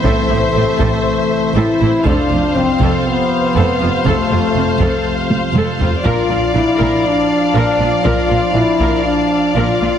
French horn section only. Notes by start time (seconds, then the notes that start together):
0.05 A3
1.55 E4
2.06 D4
2.57 C4
3.08 B3
4.05 A3
6.05 F4
6.54 E4
7.05 D4
8.04 F4
8.54 E4
9.04 D4
9.55 F4